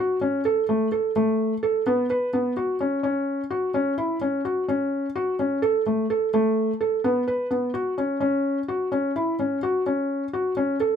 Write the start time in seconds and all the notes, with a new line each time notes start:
Already playing: F#4
0.21 C#4
0.45 A4
0.69 A3
0.92 A4
1.16 A3
1.63 A4
1.87 B3
2.10 B4
2.33 B3
2.57 F#4
2.81 C#4
3.03 C#4
3.50 F#4
3.74 C#4
3.98 E4
4.21 C#4
4.45 F#4
4.68 C#4
5.16 F#4
5.39 C#4
5.62 A4
5.86 A3
6.10 A4
6.34 A3
6.81 A4
7.04 B3
7.28 B4
7.51 B3
7.74 F#4
7.98 C#4
8.20 C#4
8.68 F#4
8.92 C#4
9.16 E4
9.39 C#4
9.63 F#4
9.86 C#4
10.33 F#4
10.57 C#4
10.80 A4